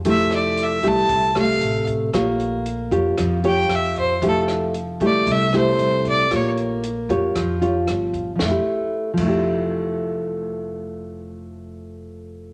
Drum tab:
CC |--------|--------|--------|--------|
HH |xxxxxxxx|xxxxxxxx|xxxxxxxx|xxxxxxxx|
SD |-r---r--|r---r-r-|-r---r--|r---r-r-|
BD |o--oo--o|o--oo--o|o--oo--o|o--oo--o|

CC |---x----|--------|
HH |--------|--------|
SD |o-------|--------|
BD |o--o----|--------|